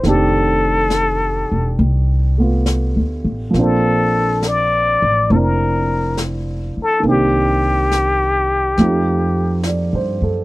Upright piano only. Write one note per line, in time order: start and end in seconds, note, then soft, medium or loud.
0.03 3.54 D#3 soft
0.03 2.36 A3 soft
0.03 3.55 C4 soft
0.07 3.56 D4 soft
0.07 3.57 G4 medium
2.38 3.54 A3 soft
2.38 3.55 B3 soft
2.38 3.56 F4 soft
3.51 7.03 F3 soft
3.51 7.02 A#3 soft
3.56 5.30 C4 soft
3.56 5.30 D4 soft
3.61 7.08 C5 soft
5.31 7.04 C4 soft
5.31 7.05 D4 soft
5.31 7.06 E4 soft
5.31 7.07 D5 soft
7.00 8.76 D#3 soft
7.00 8.77 A#3 soft
7.06 8.78 C4 soft
7.06 8.80 D4 soft
7.11 8.80 G4 soft
8.79 10.44 F3 soft
8.79 10.44 A3 soft
8.79 10.44 C4 soft
8.79 10.44 D#4 soft
8.79 10.44 G4 soft
9.66 10.21 D5 soft
9.95 10.40 C5 soft
10.23 10.44 A4 soft